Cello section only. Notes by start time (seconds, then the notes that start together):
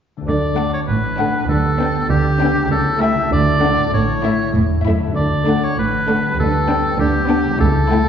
0.26 D3
0.88 A2
1.49 D3
2.09 D3
2.70 C#3
3.32 D3
3.93 A2
4.55 A2
4.86 F#2
5.17 D3
5.78 A2
6.40 D3
7.00 D3
7.61 C#3